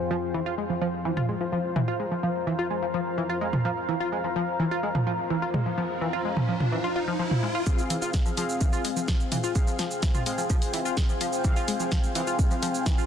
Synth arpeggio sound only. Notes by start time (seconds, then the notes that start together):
0.11 F3
0.34 E3
0.46 F4
0.58 G#3
0.70 F3
0.81 F3
1.05 E3
1.17 F4
1.29 G#3
1.41 F3
1.52 F3
1.76 E3
1.88 F4
2.00 G#3
2.11 F3
2.23 F3
2.47 E3
2.59 F4
2.70 G#3
2.82 F3
2.94 F3
3.18 E3
3.29 F4
3.41 G#3
3.53 F3
3.65 F3
3.89 E3
4.00 F4
4.12 G#3
4.24 F3
4.36 F3
4.59 E3
4.71 F4
4.83 G#3
4.95 F3
5.07 F3
5.30 E3
5.42 F4
5.54 G#3
5.66 F3
5.78 F3
6.01 E3
6.13 F4
6.25 G#3
6.37 F3
6.49 F3
6.72 E3
6.84 F4
6.96 F4
7.08 F3
7.19 F3
7.43 G#3
7.55 F4
7.67 F3
7.90 E3
8.02 F4
8.14 G#3
8.26 F3
8.37 F3
8.61 E3
8.73 F4
8.85 G#3
8.96 F3
9.08 F3
9.32 E3
9.44 F4
9.55 G#3
9.67 F3
9.79 F3
10.03 E3
10.14 F4
10.26 G#3
10.38 F3
10.50 F3
10.74 E3
10.85 F4
10.97 G#3
11.09 F3
11.21 F3
11.45 E3
11.56 F4
11.68 G#3
11.80 F3
11.92 F3
12.15 E3
12.27 F4
12.39 G#3
12.51 F3
12.63 F3
12.86 E3
12.98 F4